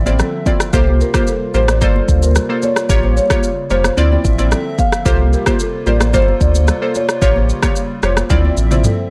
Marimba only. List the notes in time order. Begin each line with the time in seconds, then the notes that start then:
0.74 C5
1.01 A#4
1.55 C5
1.82 D5
2.23 A#4
2.63 C#5
3.17 C#5
3.71 C5
3.98 D5
4.79 F5
5.87 D5
6.14 C5
6.42 D5
6.95 C#5